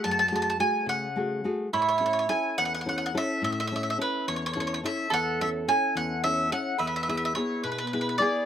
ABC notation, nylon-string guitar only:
X:1
M:6/8
L:1/8
Q:3/8=71
K:A
V:1 name="Nylon-string guitar"
[F,,A,FG] [A,FG] [A,FG] C, [A,FG] [A,FG] | A,, [CEA] [CEA] E,, [CEA] [CEA] | A,, [CEA] [CEA] E,, [CEA] [CEA] | E,, [CEA] [CEA] E,, [CEA] [CEA] |
E,, [B,EG] [B,EG] B,, [B,EG] [B,EG] |]